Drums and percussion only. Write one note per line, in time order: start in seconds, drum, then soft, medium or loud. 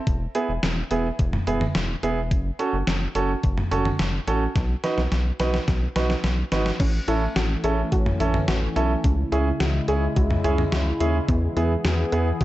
0.07 kick loud
0.07 closed hi-hat medium
0.35 closed hi-hat medium
0.63 snare loud
0.63 closed hi-hat medium
0.91 closed hi-hat medium
1.19 kick medium
1.19 closed hi-hat medium
1.33 mid tom medium
1.47 closed hi-hat medium
1.61 mid tom medium
1.75 snare loud
1.75 closed hi-hat medium
2.03 closed hi-hat medium
2.31 kick loud
2.31 closed hi-hat medium
2.59 closed hi-hat medium
2.87 snare loud
2.87 closed hi-hat medium
3.15 closed hi-hat medium
3.43 kick medium
3.43 closed hi-hat medium
3.58 mid tom medium
3.71 closed hi-hat medium
3.85 mid tom medium
3.99 snare loud
3.99 closed hi-hat medium
4.28 closed hi-hat medium
4.56 kick loud
4.56 snare medium
4.56 closed hi-hat medium
4.84 snare medium
4.84 closed hi-hat medium
4.98 snare medium
5.12 snare medium
5.12 closed hi-hat medium
5.40 snare medium
5.40 closed hi-hat medium
5.54 snare medium
5.68 kick medium
5.68 snare medium
5.68 closed hi-hat medium
5.96 snare medium
5.96 closed hi-hat medium
6.10 snare medium
6.24 snare medium
6.24 closed hi-hat medium
6.52 snare medium
6.52 closed hi-hat medium
6.66 snare medium
6.80 kick loud
6.80 closed hi-hat medium
6.80 crash medium
7.08 closed hi-hat medium
7.36 snare loud
7.36 closed hi-hat medium
7.64 closed hi-hat medium
7.92 kick medium
7.92 closed hi-hat medium
8.06 mid tom medium
8.20 closed hi-hat medium
8.34 mid tom medium
8.48 snare loud
8.48 closed hi-hat medium
8.76 closed hi-hat medium
9.04 kick loud
9.04 closed hi-hat medium
9.32 closed hi-hat medium
9.60 snare loud
9.60 closed hi-hat medium
9.88 closed hi-hat medium
10.16 kick medium
10.16 closed hi-hat medium
10.31 mid tom medium
10.44 closed hi-hat medium
10.58 mid tom medium
10.72 snare loud
10.72 closed hi-hat medium
11.00 closed hi-hat medium
11.28 kick loud
11.28 closed hi-hat medium
11.57 closed hi-hat medium
11.85 snare loud
11.85 closed hi-hat medium
12.12 closed hi-hat medium
12.41 kick loud
12.41 closed hi-hat medium